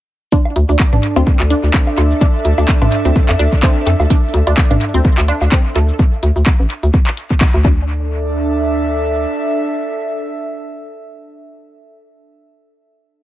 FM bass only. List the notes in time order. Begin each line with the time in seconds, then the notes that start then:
0.56 D2
0.69 D2
0.93 A1
1.16 D2
1.40 D2
1.64 D2
1.98 D2
2.45 D2
2.58 D2
2.82 A1
3.05 D2
3.29 F2
3.39 D2
3.87 F2
4.00 D2
4.34 D2
4.47 D2
4.71 A1
4.94 D2
5.18 D2
5.41 D2
5.76 D2
6.23 D2
6.36 D2
6.60 A1
6.83 D2
7.54 D2
7.65 D2